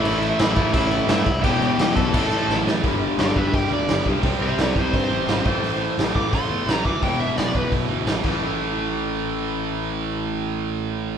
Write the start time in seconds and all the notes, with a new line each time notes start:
Already playing: A2 E3 A3 E4 E5
0.04 A1, crash
0.23 crash
0.39 A1 E4 E5, snare, crash
0.56 A1 A2 E3 A3, kick, crash
0.73 A1 E4 E5, kick, crash
0.91 crash
1.08 G2 E4 E5, snare, crash
1.26 C2, kick, crash
1.41 E1 E2 B2 E3 G4 G5, kick, crash
1.62 E1, crash
1.78 E1, snare, crash
1.96 B1 A4 A5, kick, crash
2.11 A1 A2 E3, kick, crash
2.16 A3
2.30 A2, crash
2.49 A1, snare
2.66 A1, snare
2.82 G1 G2 D3 G3, kick, open hi-hat
3.18 G1 A4 D5, snare, open hi-hat
3.36 G1 B4 E5, kick
3.54 G1 D5 G5, kick, open hi-hat
3.69 D2 G2 D3 G3
3.73 D5
3.85 G1 G2 D3 G3, open hi-hat
3.89 snare
4.04 C2 G2 D3 G3, kick
4.20 C2 C3 G3 C4, kick, open hi-hat
4.40 C2 C5 E5
4.58 C2 A4 D5, snare, open hi-hat
4.76 C2 G4 C5, kick
4.93 G2 C5, kick, open hi-hat
5.08 A1 C3 G3 C4
5.26 G#1 C3 G3 C4, snare, open hi-hat
5.43 A1 A2 E3 A3, kick
5.62 A1, open hi-hat
5.98 A1, snare, open hi-hat
6.15 A1 D6, kick
6.30 A1 A2 E3, kick, open hi-hat
6.34 A3 C6
6.48 E2 A2 E3 A3
6.65 A1 A2 E3 A3, snare, open hi-hat
6.73 A#5
6.85 D2 D6, kick
7.01 E1 E2 B2 E3 G5, kick, open hi-hat
7.18 E1 E5
7.37 E1 D5, snare, open hi-hat
7.55 E1 B4, kick
7.71 B1, kick, open hi-hat
7.87 D2 E2 B2 E3
8.05 A1 E2 B2 E3, snare, open hi-hat
8.22 A1 A2 E3 A3, kick, crash